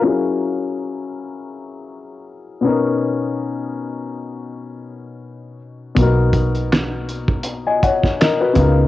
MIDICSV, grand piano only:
0, 0, Header, 1, 2, 480
1, 0, Start_track
1, 0, Tempo, 740741
1, 28, Time_signature, 4, 2, 24, 8
1, 5752, End_track
2, 0, Start_track
2, 0, Title_t, "Grand piano"
2, 0, Program_c, 0, 0
2, 0, Control_c, 0, 64, 127
2, 0, Note_on_c, 0, 65, 50
2, 12, Note_on_c, 0, 54, 53
2, 22, Note_on_c, 0, 61, 52
2, 34, Note_on_c, 0, 64, 53
2, 35, Control_c, 0, 64, 0
2, 46, Note_on_c, 0, 68, 51
2, 57, Note_on_c, 0, 70, 65
2, 151, Note_off_c, 0, 65, 0
2, 167, Control_c, 0, 64, 127
2, 1674, Note_off_c, 0, 54, 0
2, 1679, Note_off_c, 0, 61, 0
2, 1685, Note_off_c, 0, 64, 0
2, 1691, Note_off_c, 0, 68, 0
2, 1691, Note_on_c, 0, 47, 57
2, 1697, Note_off_c, 0, 70, 0
2, 1701, Note_on_c, 0, 59, 51
2, 1714, Note_on_c, 0, 61, 56
2, 1716, Control_c, 0, 64, 0
2, 1725, Note_on_c, 0, 63, 50
2, 1735, Note_on_c, 0, 70, 58
2, 1840, Control_c, 0, 64, 127
2, 3593, Note_off_c, 0, 47, 0
2, 3599, Note_off_c, 0, 59, 0
2, 3605, Note_off_c, 0, 61, 0
2, 3610, Note_off_c, 0, 63, 0
2, 3615, Note_off_c, 0, 70, 0
2, 3855, Note_on_c, 0, 47, 64
2, 3866, Note_on_c, 0, 58, 46
2, 3875, Control_c, 0, 64, 0
2, 3876, Note_on_c, 0, 63, 50
2, 3888, Note_on_c, 0, 66, 53
2, 3900, Note_on_c, 0, 70, 68
2, 3908, Note_on_c, 0, 59, 52
2, 3912, Note_off_c, 0, 58, 0
2, 3979, Control_c, 0, 64, 127
2, 4819, Note_off_c, 0, 66, 0
2, 4825, Note_off_c, 0, 70, 0
2, 4968, Note_on_c, 0, 80, 52
2, 4971, Note_on_c, 0, 75, 45
2, 5068, Note_off_c, 0, 80, 0
2, 5070, Note_off_c, 0, 75, 0
2, 5078, Note_on_c, 0, 78, 52
2, 5082, Note_on_c, 0, 73, 51
2, 5301, Note_off_c, 0, 78, 0
2, 5303, Note_off_c, 0, 73, 0
2, 5319, Note_on_c, 0, 75, 57
2, 5321, Note_on_c, 0, 70, 49
2, 5436, Note_off_c, 0, 75, 0
2, 5437, Note_off_c, 0, 70, 0
2, 5448, Note_on_c, 0, 71, 54
2, 5451, Note_on_c, 0, 66, 45
2, 5515, Note_off_c, 0, 47, 0
2, 5526, Note_off_c, 0, 63, 0
2, 5532, Note_on_c, 0, 49, 58
2, 5533, Note_off_c, 0, 59, 0
2, 5543, Note_on_c, 0, 59, 53
2, 5554, Note_on_c, 0, 63, 52
2, 5555, Control_c, 0, 64, 0
2, 5566, Note_on_c, 0, 65, 55
2, 5578, Note_on_c, 0, 70, 61
2, 5660, Control_c, 0, 64, 127
2, 5671, Note_off_c, 0, 71, 0
2, 5672, Note_off_c, 0, 66, 0
2, 5752, Note_off_c, 0, 49, 0
2, 5752, Note_off_c, 0, 59, 0
2, 5752, Note_off_c, 0, 63, 0
2, 5752, Note_off_c, 0, 65, 0
2, 5752, Note_off_c, 0, 70, 0
2, 5752, End_track
0, 0, End_of_file